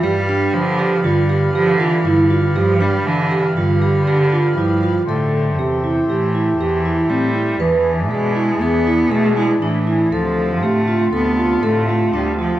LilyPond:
<<
  \new Staff \with { instrumentName = "Vibraphone" } { \time 5/4 \key a \minor \tempo 4 = 119 g'8 d'4 g'8 f'8 g'8 g'8 f'8 e'8 f'8 | g'8 d'4 g'8 f'8 g'8 g'8 f'8 e'8 f'8 | a'4 g'8 e'8 g'8 e'8 g'8 e'8 c'8 e'8 | b'4 gis'8 e'8 gis'8 e'8 gis'8 e'8 d'8 e'8 |
a'4 g'8 f'8 a'8 f'8 a'8 f'8 d'8 f'8 | }
  \new Staff \with { instrumentName = "Harmonium" } { \time 5/4 \key a \minor <g b' f''>1~ <g b' f''>4~ | <g b' f''>1~ <g b' f''>4 | <a g' c''>1~ <a g' c''>4 | <e d' gis'>1~ <e d' gis'>4 |
<c d f'>1~ <c d f'>4 | }
  \new Staff \with { instrumentName = "Cello" } { \clef bass \time 5/4 \key a \minor g4 f4 d4 f8 e8 d4 | f8 g8 e4 d2 f4 | d4 c4 e4 e4 g4 | e4 gis4 b4 a8 gis8 e4 |
f4 a4 b4 a4 g8 f8 | }
  \new Staff \with { instrumentName = "Cello" } { \clef bass \time 5/4 \key a \minor g,4 d4 g,4 d4 g,4 | g,4 d4 g,4 d4 g,4 | a,4 e,4 a,4 e,4 a,4 | e,4 b,4 e,4 b,4 a,4 |
d,4 a,4 d,4 a,4 d,4 | }
>>